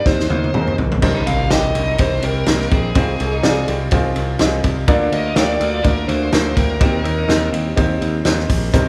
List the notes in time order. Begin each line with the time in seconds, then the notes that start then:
Already playing: A#2 C4 D#4 G4 A#4
0.06 D#2 C4 D#4 G4 C5, kick, snare
0.20 snare
0.30 D#2, high tom
0.44 high tom
0.54 D#2 C4 D#4 G4 G#4, mid tom
0.61 A#4
0.67 mid tom
0.78 A#1, floor tom
0.92 floor tom
1.02 C2 G2 C4 D#4 G4 A#4 C5, kick, crash, impact
1.15 D#4
1.27 C2 F5, ride
1.40 F4
1.50 C2 C4 D#4 G4 A#4 D#5, snare, ride
1.75 C2, ride
1.88 D#4
1.98 C2 C4 D#4 G4 A#4 C5, kick, ride
2.22 C2 C4 A#4, ride
2.46 C2 A#3 C4 D#4 G4 A#4 C5, snare, ride
2.61 snare
2.71 A#1 C4 G#4, kick, ride
2.95 C2 C3 C4 D#4 F4 G#4 C5, kick, ride
3.20 C2, ride
3.33 D#4
3.43 C2 C4 D#4 F4 G#4 D5, snare, ride
3.68 C2 C4, ride
3.91 C2 C4 D#4 F4 G#4 C5, kick, ride
4.16 C2, ride
4.39 C2 C4 D#4 F4 G#4 D#5, snare, ride
4.64 C2, kick, ride
4.87 D2 D3 A#3 D4 F4 A#4 D5, kick, ride
5.02 D4
5.12 D2 D#5, ride
5.26 F4
5.35 D2 A#3 D4 F4 G4 A#4 D5 F5, snare, ride
5.60 D2, ride
5.74 F4
5.84 D2 A#3 D4 F4 A#4 D5, kick, ride
6.08 D2 D4 C5, ride
6.32 D2 A#3 D4 F4 A#4 C5, snare, ride
6.56 D2 C4 A#4, kick, ride
6.80 D#2 A#2 C4 D#4 G4 A#4 C5, kick, ride
7.04 D#2, ride
7.18 D#4
7.28 D#2 C4 D#4 G4 A#4 C5, snare, ride
7.53 D#2 C4, ride
7.76 D#2 C4 D#4 G4 A#4 C5, kick, ride
8.01 D#2, ride
8.25 D#2 C4 D#4 G4 A#4 C5, snare, ride
8.39 snare
8.49 A#1, kick, open hi-hat, ride
8.73 C2 G2 C4 D#4 G4 A#4 C5, kick, hi-hat pedal, ride